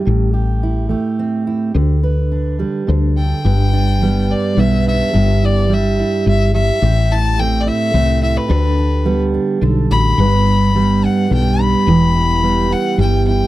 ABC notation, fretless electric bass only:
X:1
M:3/4
L:1/8
Q:1/4=107
K:G
V:1 name="Fretless electric bass" clef=bass
A,,,4 z2 | D,,4 D,,2 | G,,,4 B,,,2 | G,,,4 G,,,2 |
A,,,4 C,,2 | D,,4 B,,, A,,, | G,,,4 B,,,2 | E,,,4 G,,,2 |]